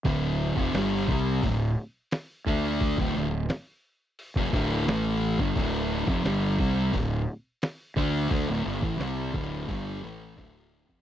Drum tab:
HH |o---o---o---o---|o---o---o---o---|o---o---o---o---|o---o---o---o---|
SD |----o-------o---|----o-------o---|----o-------o---|----o-----------|
BD |o--o--o-o-----o-|oo-------oo----o|o--o--o-o-----o-|o--o--o-o---o--o|